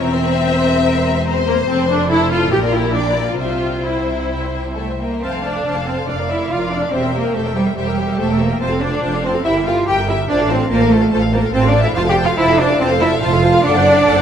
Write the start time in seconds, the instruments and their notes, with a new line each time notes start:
0.01 double bass section E1, cello section E2, viola section C4, violin section A#4 E5 A#5
0.12 violin section C5 C6
0.22 violin section A#4 A#5
0.32 violin section C5 C6
0.43 violin section A#4 A#5
0.54 violin section C5 C6
0.65 violin section A#4 A#5
0.75 violin section C5 C6
0.85 violin section A#4 A#5
0.94 violin section C5 C6
1.05 violin section A#4 A#5
1.15 violin section C5 C6
1.26 violin section A#4 C5 A#5
1.36 violin section C5 C6
1.47 viola section A#3, violin section A#4 A#5
1.58 violin section C5 C6
1.68 double bass section F1, cello section F2, viola section C4, violin section A4 A5
1.79 violin section C5 C6
1.90 viola section D4, violin section A4 A5
2.00 violin section C5 C6
2.10 viola section E4, violin section A4 A5
2.21 violin section C5 C6
2.31 viola section F4, violin section A4 A5
2.42 violin section C5 C6
2.52 double bass section A#1, cello section A#2, viola section G4, violin section A#4 G5
2.62 violin section D5 A#5
2.67 viola section F4
2.73 viola section E4, violin section A#4 G5
2.83 violin section D5 A#5
2.94 viola section D4, violin section A#4 D5 G5
3.05 violin section D5 A#5
3.10 viola section E4
3.17 violin section A#4 G5
3.26 viola section F4, violin section D5 A#5
3.39 double bass section C2, cello section C3, viola section F4, violin section C5 E5 G5
3.51 violin section C5 E5
3.62 violin section E5 G5
3.73 violin section C5 E5
3.85 viola section E4, violin section E5 G5
3.96 violin section C5 E5
4.08 violin section E5 G5
4.20 violin section C5 E5
4.31 violin section E5 G5
4.43 violin section C5 E5
4.54 violin section E5 G5
4.65 violin section C5 E5
4.76 cello section A3, violin section A4 E5 G5
4.88 violin section C5 E5
5.00 cello section A#3, violin section A#4 E5 G5
5.11 violin section C5 E5
5.22 double bass section F1, cello section C4, violin section C5 A5, viola section C5 F5
5.33 viola section A4 A5, violin section F5
5.44 cello section D4, viola section C5 F5, violin section D5 A5
5.55 viola section A4 A5, violin section F5
5.66 double bass section F1, viola section C5 F5, violin section A5
5.77 viola section A4 A5, violin section F5
5.87 cello section C4, violin section C5 A5, viola section C5 F5
5.98 viola section A4 A5, violin section F5
6.08 double bass section F1, cello section D4, viola section D5 F5, violin section D5
6.19 viola section A#4 D5, violin section F5
6.30 cello section E4, viola section D5 F5, violin section D5 E5
6.41 viola section A#4 D5, violin section F5
6.50 double bass section F1, cello section F4, viola section D5 F5, violin section D5 F5
6.61 viola section A#4 D5, violin section F5
6.71 cello section D4, viola section D5 F5, violin section D5
6.82 viola section A#4 D5, violin section F5
6.93 double bass section E1, cello section C4, viola section G4 C5, violin section C5 E5
7.04 viola section A#4 E5, violin section G5
7.14 cello section A#3, viola section G4 C5, violin section A#4 E5
7.25 viola section A#4 E5, violin section G5
7.35 double bass section E1, cello section A3, viola section G4 C5, violin section A4 E5
7.45 viola section A#4 E5, violin section G5
7.55 cello section G3, violin section G4 E5, viola section G4 C5
7.66 viola section A#4 E5, violin section G5
7.76 double bass section E1, cello section G3, viola section G4 C5, violin section G4 E5
7.87 viola section A#4 E5, violin section G5
7.98 viola section G4 C5, violin section E5
8.08 viola section A#4 E5, violin section G5
8.18 double bass section E1, cello section A3, viola section G4 C5, violin section A4 E5
8.30 viola section A#4 E5, violin section G5
8.40 cello section A#3, viola section G4 C5, violin section A#4 E5
8.50 viola section A#4 E5, violin section G5
8.61 double bass section F1, cello section C4, viola section F4 C5, violin section C5 A5
8.71 viola section A4, violin section F5
8.82 cello section D4, viola section F4 C5, violin section D5 A5
8.92 viola section A4, violin section F5
9.02 double bass section F1, viola section F4 C5, violin section A5
9.13 viola section A4, violin section F5
9.24 cello section C4, viola section F4 C5, violin section C5 A5
9.34 viola section A4, violin section F5
9.45 double bass section G1, cello section E4, viola section G4 A#4, violin section E5 G5
9.56 viola section G4 A#4, violin section E5
9.66 cello section F4, viola section G4 A#4, violin section F5 G5
9.77 viola section G4 A#4, violin section E5
9.88 double bass section G1, cello section G4, viola section G4 A#4, violin section G5
9.98 viola section G4 A#4, violin section E5
10.09 cello section E4, viola section G4 A#4, violin section E5 G5
10.19 viola section G4 A#4, violin section E5
10.30 double bass section A1, cello section D4, viola section F4 C5, violin section D5 A5
10.39 viola section A4, violin section F5
10.50 cello section C4, viola section F4 C5, violin section C5 A5
10.60 viola section A4, violin section F5
10.70 double bass section A1, cello section A#3, viola section F4 C5, violin section A#4 A5
10.81 viola section A4, violin section F5
10.91 cello section A3, viola section F4 C5, violin section A4 A5
11.01 viola section A4, violin section F5
11.11 double bass section A1, cello section A3, viola section F4 C5, violin section A4 A5
11.21 viola section A4, violin section F5
11.32 cello section A#3, viola section F4 C5, violin section A#4 A5
11.43 viola section A4, violin section F5
11.53 double bass section A1, cello section C4, viola section F4 C5, violin section C5 A5
11.63 viola section A4, violin section F5
11.67 cello section D4, violin section D5
11.74 viola section F4 C5, violin section A5
11.81 cello section E4, viola section A4, violin section E5 F5
11.95 double bass section F1, viola section F4 C5, cello section F4, violin section F5 A5
12.06 viola section A4, violin section F5 G5
12.10 cello section G4
12.16 viola section F4 C5, violin section A5
12.24 cello section F4, viola section A4, violin section F5
12.38 double bass section F1, cello section E4, viola section F4 C5, violin section E5 A5
12.48 viola section A4, violin section F5
12.58 cello section D4, viola section F4 C5, violin section D5 A5
12.69 viola section A4, violin section F5
12.79 double bass section F1, cello section C4, viola section F4 C5, violin section C5 A5
12.90 viola section A4, violin section F5
13.01 cello section E4, viola section F4 C5, violin section E5 A5
13.11 viola section A4, violin section F5
13.22 double bass section F1, cello section F4, viola section F4 C5, violin section F5 A5
13.33 viola section A4, violin section F5
13.43 viola section F4 C5, violin section A5
13.53 viola section A4, violin section F5
13.64 double bass section F#1, cello section D4, viola section A4 D5, violin section D5 F#5
13.74 viola section C5 F#5, violin section A5
13.85 viola section A4 D5, violin section F#5
13.96 viola section C5 F#5, violin section A5
14.06 double bass section F#1, viola section A4 D5, violin section F#5
14.17 viola section C5 F#5, violin section A5